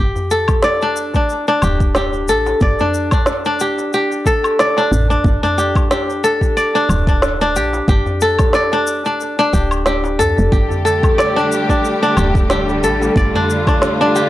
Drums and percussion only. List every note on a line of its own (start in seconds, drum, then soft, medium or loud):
0.15 darbuka ka soft
0.15 darbuka dum medium
0.15 shaker soft
0.31 shaker medium
0.48 kick loud
0.48 low woodblock medium
0.48 shaker soft
0.62 snare loud
0.62 shaker soft
0.82 shaker soft
0.96 darbuka tek soft
0.96 shaker medium
1.14 kick medium
1.14 darbuka ka medium
1.14 shaker soft
1.29 shaker soft
1.48 darbuka ka soft
1.48 shaker soft
1.62 darbuka ka soft
1.62 darbuka dum medium
1.62 low woodblock medium
1.62 shaker medium
1.80 kick medium
1.80 shaker soft
1.95 snare loud
1.95 shaker soft
2.13 shaker soft
2.28 shaker medium
2.46 darbuka tek medium
2.46 shaker soft
2.61 kick loud
2.61 shaker soft
2.79 darbuka ka soft
2.79 darbuka dum medium
2.79 shaker soft
2.94 shaker medium
3.11 kick loud
3.11 snare soft
3.11 low woodblock medium
3.11 shaker soft
3.26 snare loud
3.26 shaker soft
3.45 shaker soft
3.60 shaker medium
3.78 darbuka ka medium
3.78 shaker soft
3.93 shaker soft
4.12 shaker soft
4.25 kick medium
4.25 darbuka ka medium
4.25 shaker medium
4.44 low woodblock medium
4.44 shaker soft
4.59 snare loud
4.59 shaker soft
4.77 darbuka tek medium
4.77 shaker soft
4.92 darbuka dum medium
4.92 shaker medium
5.11 shaker soft
5.24 kick loud
5.24 shaker soft
5.42 darbuka ka soft
5.42 darbuka dum medium
5.42 shaker soft
5.58 shaker medium
5.76 kick loud
5.76 low woodblock medium
5.76 shaker soft
5.91 snare loud
5.91 shaker soft
6.10 shaker soft
6.24 darbuka tek soft
6.24 shaker medium
6.41 kick medium
6.41 darbuka ka medium
6.41 shaker soft
6.57 shaker soft
6.75 darbuka ka soft
6.75 shaker soft
6.89 darbuka ka soft
6.89 darbuka dum medium
6.89 low woodblock medium
6.89 shaker medium
7.07 kick loud
7.07 shaker soft
7.22 snare loud
7.22 shaker soft
7.41 shaker soft
7.56 shaker medium
7.73 darbuka tek medium
7.73 shaker soft
7.88 kick loud
7.88 shaker soft
8.06 darbuka ka soft
8.06 darbuka dum medium
8.06 shaker soft
8.21 shaker medium
8.39 kick loud
8.39 snare soft
8.39 low woodblock medium
8.39 shaker soft
8.53 snare loud
8.53 shaker soft
8.72 darbuka tek medium
8.72 shaker soft
8.87 darbuka tek soft
8.87 shaker medium
9.05 darbuka ka soft
9.05 shaker soft
9.21 shaker soft
9.39 shaker soft
9.53 kick medium
9.53 darbuka ka soft
9.53 shaker medium
9.71 low woodblock medium
9.71 shaker soft
9.86 snare loud
9.86 shaker soft
10.04 darbuka tek medium
10.04 shaker soft
10.20 darbuka dum medium
10.20 shaker medium
10.38 shaker soft
10.52 kick loud
10.52 shaker soft
10.70 darbuka ka soft
10.70 darbuka dum medium
10.70 shaker soft
10.86 shaker medium
11.03 kick medium
11.03 low woodblock medium
11.03 shaker soft
11.19 snare medium
11.19 shaker soft
11.38 shaker soft
11.51 darbuka tek soft
11.51 shaker medium
11.69 kick medium
11.69 darbuka ka medium
11.69 shaker soft
11.85 shaker soft
12.02 darbuka ka soft
12.02 shaker soft
12.17 darbuka ka medium
12.17 darbuka dum medium
12.17 low woodblock medium
12.17 shaker medium
12.35 kick medium
12.35 shaker soft
12.50 snare loud
12.50 shaker soft
12.69 shaker soft
12.84 shaker medium
13.02 darbuka tek medium
13.02 shaker soft
13.16 kick loud
13.16 shaker soft
13.35 darbuka ka soft
13.35 darbuka dum medium
13.35 shaker soft
13.50 shaker medium
13.67 kick medium
13.67 snare soft
13.67 low woodblock medium
13.67 shaker soft
13.82 snare medium
13.82 shaker soft
14.01 shaker soft
14.16 shaker medium